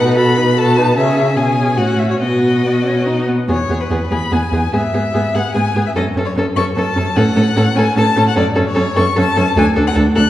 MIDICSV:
0, 0, Header, 1, 5, 480
1, 0, Start_track
1, 0, Key_signature, 4, "major"
1, 0, Tempo, 400802
1, 1160, Time_signature, 3, 2, 24, 8
1, 2128, Tempo, 428878
1, 4048, Tempo, 411805
1, 6448, Tempo, 401606
1, 12121, End_track
2, 0, Start_track
2, 0, Title_t, "Violin"
2, 0, Program_c, 0, 40
2, 0, Note_on_c, 0, 78, 80
2, 197, Note_off_c, 0, 78, 0
2, 209, Note_on_c, 0, 83, 76
2, 695, Note_on_c, 0, 81, 78
2, 713, Note_off_c, 0, 83, 0
2, 1157, Note_off_c, 0, 81, 0
2, 1164, Note_on_c, 0, 76, 73
2, 1638, Note_on_c, 0, 80, 65
2, 1656, Note_off_c, 0, 76, 0
2, 2128, Note_on_c, 0, 78, 66
2, 2145, Note_off_c, 0, 80, 0
2, 2365, Note_on_c, 0, 76, 59
2, 2382, Note_off_c, 0, 78, 0
2, 2487, Note_off_c, 0, 76, 0
2, 2496, Note_on_c, 0, 73, 49
2, 2543, Note_off_c, 0, 73, 0
2, 2610, Note_on_c, 0, 75, 58
2, 3785, Note_off_c, 0, 75, 0
2, 4055, Note_on_c, 0, 73, 59
2, 4411, Note_on_c, 0, 71, 49
2, 4429, Note_off_c, 0, 73, 0
2, 4773, Note_on_c, 0, 83, 61
2, 4790, Note_off_c, 0, 71, 0
2, 5018, Note_on_c, 0, 80, 60
2, 5035, Note_off_c, 0, 83, 0
2, 5496, Note_off_c, 0, 80, 0
2, 5503, Note_on_c, 0, 76, 64
2, 6208, Note_on_c, 0, 78, 64
2, 6226, Note_off_c, 0, 76, 0
2, 6431, Note_off_c, 0, 78, 0
2, 6438, Note_on_c, 0, 80, 63
2, 6799, Note_off_c, 0, 80, 0
2, 6817, Note_on_c, 0, 76, 58
2, 6864, Note_off_c, 0, 76, 0
2, 6940, Note_on_c, 0, 75, 72
2, 7036, Note_off_c, 0, 75, 0
2, 7286, Note_on_c, 0, 73, 48
2, 7382, Note_off_c, 0, 73, 0
2, 7657, Note_on_c, 0, 85, 73
2, 7752, Note_off_c, 0, 85, 0
2, 7900, Note_on_c, 0, 81, 72
2, 8380, Note_on_c, 0, 78, 81
2, 8398, Note_off_c, 0, 81, 0
2, 9096, Note_on_c, 0, 80, 77
2, 9114, Note_off_c, 0, 78, 0
2, 9331, Note_off_c, 0, 80, 0
2, 9338, Note_on_c, 0, 81, 79
2, 9689, Note_off_c, 0, 81, 0
2, 9711, Note_on_c, 0, 78, 70
2, 9810, Note_off_c, 0, 78, 0
2, 9817, Note_on_c, 0, 74, 84
2, 9912, Note_off_c, 0, 74, 0
2, 10176, Note_on_c, 0, 73, 70
2, 10535, Note_on_c, 0, 85, 80
2, 10553, Note_off_c, 0, 73, 0
2, 10776, Note_off_c, 0, 85, 0
2, 10789, Note_on_c, 0, 81, 84
2, 11252, Note_off_c, 0, 81, 0
2, 11263, Note_on_c, 0, 80, 89
2, 11359, Note_off_c, 0, 80, 0
2, 11613, Note_on_c, 0, 78, 78
2, 11708, Note_off_c, 0, 78, 0
2, 11963, Note_on_c, 0, 90, 85
2, 12121, Note_off_c, 0, 90, 0
2, 12121, End_track
3, 0, Start_track
3, 0, Title_t, "Violin"
3, 0, Program_c, 1, 40
3, 0, Note_on_c, 1, 71, 46
3, 201, Note_on_c, 1, 69, 48
3, 219, Note_off_c, 1, 71, 0
3, 443, Note_on_c, 1, 71, 48
3, 461, Note_off_c, 1, 69, 0
3, 682, Note_off_c, 1, 71, 0
3, 692, Note_on_c, 1, 69, 45
3, 918, Note_on_c, 1, 71, 44
3, 936, Note_off_c, 1, 69, 0
3, 1153, Note_off_c, 1, 71, 0
3, 1160, Note_on_c, 1, 68, 50
3, 1604, Note_off_c, 1, 68, 0
3, 1633, Note_on_c, 1, 68, 49
3, 2121, Note_on_c, 1, 66, 44
3, 2138, Note_off_c, 1, 68, 0
3, 2596, Note_off_c, 1, 66, 0
3, 2603, Note_on_c, 1, 66, 42
3, 3787, Note_off_c, 1, 66, 0
3, 4041, Note_on_c, 1, 68, 41
3, 4134, Note_off_c, 1, 68, 0
3, 4293, Note_on_c, 1, 68, 38
3, 4386, Note_off_c, 1, 68, 0
3, 4531, Note_on_c, 1, 68, 42
3, 4624, Note_off_c, 1, 68, 0
3, 4775, Note_on_c, 1, 68, 42
3, 4869, Note_off_c, 1, 68, 0
3, 5007, Note_on_c, 1, 68, 39
3, 5100, Note_off_c, 1, 68, 0
3, 5260, Note_on_c, 1, 68, 38
3, 5353, Note_off_c, 1, 68, 0
3, 5496, Note_on_c, 1, 68, 43
3, 5589, Note_off_c, 1, 68, 0
3, 5736, Note_on_c, 1, 68, 38
3, 5829, Note_off_c, 1, 68, 0
3, 5972, Note_on_c, 1, 68, 43
3, 6065, Note_off_c, 1, 68, 0
3, 6209, Note_on_c, 1, 68, 42
3, 6303, Note_off_c, 1, 68, 0
3, 6439, Note_on_c, 1, 68, 42
3, 6535, Note_off_c, 1, 68, 0
3, 6693, Note_on_c, 1, 68, 45
3, 6789, Note_off_c, 1, 68, 0
3, 6935, Note_on_c, 1, 69, 46
3, 7031, Note_off_c, 1, 69, 0
3, 7194, Note_on_c, 1, 69, 41
3, 7286, Note_off_c, 1, 69, 0
3, 7436, Note_on_c, 1, 69, 47
3, 7528, Note_off_c, 1, 69, 0
3, 7675, Note_on_c, 1, 69, 47
3, 7766, Note_off_c, 1, 69, 0
3, 7916, Note_on_c, 1, 69, 46
3, 8007, Note_off_c, 1, 69, 0
3, 8142, Note_on_c, 1, 69, 47
3, 8236, Note_off_c, 1, 69, 0
3, 8385, Note_on_c, 1, 69, 56
3, 8479, Note_off_c, 1, 69, 0
3, 8611, Note_on_c, 1, 69, 49
3, 8707, Note_off_c, 1, 69, 0
3, 8859, Note_on_c, 1, 69, 52
3, 8953, Note_off_c, 1, 69, 0
3, 9114, Note_on_c, 1, 69, 55
3, 9206, Note_off_c, 1, 69, 0
3, 9344, Note_on_c, 1, 69, 50
3, 9438, Note_off_c, 1, 69, 0
3, 9575, Note_on_c, 1, 69, 48
3, 9670, Note_off_c, 1, 69, 0
3, 9804, Note_on_c, 1, 69, 56
3, 9899, Note_off_c, 1, 69, 0
3, 10034, Note_on_c, 1, 69, 54
3, 10130, Note_off_c, 1, 69, 0
3, 10270, Note_on_c, 1, 69, 58
3, 10365, Note_off_c, 1, 69, 0
3, 10521, Note_on_c, 1, 69, 57
3, 10617, Note_off_c, 1, 69, 0
3, 10761, Note_on_c, 1, 69, 53
3, 10857, Note_off_c, 1, 69, 0
3, 11003, Note_on_c, 1, 69, 56
3, 11099, Note_off_c, 1, 69, 0
3, 11247, Note_on_c, 1, 69, 57
3, 11342, Note_off_c, 1, 69, 0
3, 11478, Note_on_c, 1, 69, 56
3, 11574, Note_off_c, 1, 69, 0
3, 11705, Note_on_c, 1, 69, 57
3, 11800, Note_off_c, 1, 69, 0
3, 11951, Note_on_c, 1, 69, 59
3, 12047, Note_off_c, 1, 69, 0
3, 12121, End_track
4, 0, Start_track
4, 0, Title_t, "Viola"
4, 0, Program_c, 2, 41
4, 0, Note_on_c, 2, 63, 45
4, 203, Note_on_c, 2, 66, 46
4, 221, Note_off_c, 2, 63, 0
4, 450, Note_on_c, 2, 63, 44
4, 468, Note_off_c, 2, 66, 0
4, 682, Note_off_c, 2, 63, 0
4, 689, Note_on_c, 2, 66, 44
4, 933, Note_on_c, 2, 63, 43
4, 951, Note_off_c, 2, 66, 0
4, 1163, Note_off_c, 2, 63, 0
4, 1171, Note_on_c, 2, 61, 47
4, 1610, Note_off_c, 2, 61, 0
4, 1644, Note_on_c, 2, 61, 44
4, 2122, Note_off_c, 2, 61, 0
4, 2142, Note_on_c, 2, 61, 41
4, 2622, Note_on_c, 2, 59, 44
4, 2639, Note_off_c, 2, 61, 0
4, 3052, Note_off_c, 2, 59, 0
4, 3098, Note_on_c, 2, 59, 47
4, 3318, Note_off_c, 2, 59, 0
4, 3338, Note_on_c, 2, 61, 45
4, 3566, Note_on_c, 2, 63, 51
4, 3583, Note_off_c, 2, 61, 0
4, 3800, Note_off_c, 2, 63, 0
4, 3807, Note_on_c, 2, 59, 44
4, 3896, Note_off_c, 2, 59, 0
4, 4044, Note_on_c, 2, 59, 43
4, 4138, Note_off_c, 2, 59, 0
4, 4292, Note_on_c, 2, 59, 36
4, 4386, Note_off_c, 2, 59, 0
4, 4536, Note_on_c, 2, 59, 37
4, 4630, Note_off_c, 2, 59, 0
4, 4771, Note_on_c, 2, 59, 37
4, 4864, Note_off_c, 2, 59, 0
4, 5016, Note_on_c, 2, 59, 40
4, 5109, Note_off_c, 2, 59, 0
4, 5260, Note_on_c, 2, 59, 38
4, 5353, Note_off_c, 2, 59, 0
4, 5501, Note_on_c, 2, 59, 41
4, 5595, Note_off_c, 2, 59, 0
4, 5737, Note_on_c, 2, 59, 39
4, 5830, Note_off_c, 2, 59, 0
4, 5978, Note_on_c, 2, 59, 43
4, 6071, Note_off_c, 2, 59, 0
4, 6215, Note_on_c, 2, 59, 39
4, 6308, Note_off_c, 2, 59, 0
4, 6454, Note_on_c, 2, 59, 44
4, 6550, Note_off_c, 2, 59, 0
4, 6699, Note_on_c, 2, 59, 43
4, 6794, Note_off_c, 2, 59, 0
4, 6943, Note_on_c, 2, 61, 47
4, 7037, Note_off_c, 2, 61, 0
4, 7175, Note_on_c, 2, 61, 40
4, 7271, Note_off_c, 2, 61, 0
4, 7421, Note_on_c, 2, 61, 45
4, 7516, Note_off_c, 2, 61, 0
4, 7659, Note_on_c, 2, 61, 41
4, 7753, Note_off_c, 2, 61, 0
4, 7900, Note_on_c, 2, 61, 46
4, 7994, Note_off_c, 2, 61, 0
4, 8126, Note_on_c, 2, 61, 49
4, 8222, Note_off_c, 2, 61, 0
4, 8369, Note_on_c, 2, 61, 54
4, 8465, Note_off_c, 2, 61, 0
4, 8604, Note_on_c, 2, 61, 49
4, 8700, Note_off_c, 2, 61, 0
4, 8849, Note_on_c, 2, 61, 53
4, 8944, Note_off_c, 2, 61, 0
4, 9080, Note_on_c, 2, 61, 49
4, 9176, Note_off_c, 2, 61, 0
4, 9326, Note_on_c, 2, 61, 51
4, 9422, Note_off_c, 2, 61, 0
4, 9564, Note_on_c, 2, 61, 52
4, 9659, Note_off_c, 2, 61, 0
4, 9800, Note_on_c, 2, 61, 57
4, 9896, Note_off_c, 2, 61, 0
4, 10041, Note_on_c, 2, 61, 53
4, 10137, Note_off_c, 2, 61, 0
4, 10287, Note_on_c, 2, 61, 52
4, 10383, Note_off_c, 2, 61, 0
4, 10537, Note_on_c, 2, 61, 54
4, 10633, Note_off_c, 2, 61, 0
4, 10783, Note_on_c, 2, 61, 54
4, 10877, Note_off_c, 2, 61, 0
4, 11010, Note_on_c, 2, 61, 58
4, 11106, Note_off_c, 2, 61, 0
4, 11257, Note_on_c, 2, 62, 64
4, 11351, Note_off_c, 2, 62, 0
4, 11494, Note_on_c, 2, 62, 54
4, 11588, Note_off_c, 2, 62, 0
4, 11725, Note_on_c, 2, 62, 55
4, 11821, Note_off_c, 2, 62, 0
4, 11966, Note_on_c, 2, 62, 52
4, 12062, Note_off_c, 2, 62, 0
4, 12121, End_track
5, 0, Start_track
5, 0, Title_t, "Cello"
5, 0, Program_c, 3, 42
5, 0, Note_on_c, 3, 47, 56
5, 1131, Note_off_c, 3, 47, 0
5, 1156, Note_on_c, 3, 49, 53
5, 1635, Note_on_c, 3, 47, 47
5, 1653, Note_off_c, 3, 49, 0
5, 2122, Note_on_c, 3, 45, 47
5, 2139, Note_off_c, 3, 47, 0
5, 2602, Note_off_c, 3, 45, 0
5, 2608, Note_on_c, 3, 47, 43
5, 3789, Note_off_c, 3, 47, 0
5, 4041, Note_on_c, 3, 40, 47
5, 4133, Note_off_c, 3, 40, 0
5, 4285, Note_on_c, 3, 40, 41
5, 4378, Note_off_c, 3, 40, 0
5, 4526, Note_on_c, 3, 40, 47
5, 4619, Note_off_c, 3, 40, 0
5, 4768, Note_on_c, 3, 40, 41
5, 4861, Note_off_c, 3, 40, 0
5, 5008, Note_on_c, 3, 40, 46
5, 5101, Note_off_c, 3, 40, 0
5, 5249, Note_on_c, 3, 40, 45
5, 5343, Note_off_c, 3, 40, 0
5, 5487, Note_on_c, 3, 44, 52
5, 5580, Note_off_c, 3, 44, 0
5, 5726, Note_on_c, 3, 44, 43
5, 5819, Note_off_c, 3, 44, 0
5, 5964, Note_on_c, 3, 44, 50
5, 6057, Note_off_c, 3, 44, 0
5, 6202, Note_on_c, 3, 44, 46
5, 6296, Note_off_c, 3, 44, 0
5, 6442, Note_on_c, 3, 44, 52
5, 6537, Note_off_c, 3, 44, 0
5, 6687, Note_on_c, 3, 44, 49
5, 6783, Note_off_c, 3, 44, 0
5, 6923, Note_on_c, 3, 42, 51
5, 7019, Note_off_c, 3, 42, 0
5, 7168, Note_on_c, 3, 42, 51
5, 7264, Note_off_c, 3, 42, 0
5, 7415, Note_on_c, 3, 42, 52
5, 7510, Note_off_c, 3, 42, 0
5, 7652, Note_on_c, 3, 42, 52
5, 7748, Note_off_c, 3, 42, 0
5, 7895, Note_on_c, 3, 42, 51
5, 7990, Note_off_c, 3, 42, 0
5, 8131, Note_on_c, 3, 42, 53
5, 8227, Note_off_c, 3, 42, 0
5, 8374, Note_on_c, 3, 45, 61
5, 8469, Note_off_c, 3, 45, 0
5, 8610, Note_on_c, 3, 45, 56
5, 8706, Note_off_c, 3, 45, 0
5, 8851, Note_on_c, 3, 45, 58
5, 8947, Note_off_c, 3, 45, 0
5, 9090, Note_on_c, 3, 45, 54
5, 9186, Note_off_c, 3, 45, 0
5, 9330, Note_on_c, 3, 45, 60
5, 9426, Note_off_c, 3, 45, 0
5, 9577, Note_on_c, 3, 45, 57
5, 9672, Note_off_c, 3, 45, 0
5, 9812, Note_on_c, 3, 42, 62
5, 9907, Note_off_c, 3, 42, 0
5, 10054, Note_on_c, 3, 42, 58
5, 10149, Note_off_c, 3, 42, 0
5, 10290, Note_on_c, 3, 42, 63
5, 10386, Note_off_c, 3, 42, 0
5, 10535, Note_on_c, 3, 42, 58
5, 10630, Note_off_c, 3, 42, 0
5, 10771, Note_on_c, 3, 42, 64
5, 10867, Note_off_c, 3, 42, 0
5, 11009, Note_on_c, 3, 42, 64
5, 11105, Note_off_c, 3, 42, 0
5, 11247, Note_on_c, 3, 38, 70
5, 11342, Note_off_c, 3, 38, 0
5, 11484, Note_on_c, 3, 38, 57
5, 11580, Note_off_c, 3, 38, 0
5, 11724, Note_on_c, 3, 38, 64
5, 11820, Note_off_c, 3, 38, 0
5, 11967, Note_on_c, 3, 38, 58
5, 12062, Note_off_c, 3, 38, 0
5, 12121, End_track
0, 0, End_of_file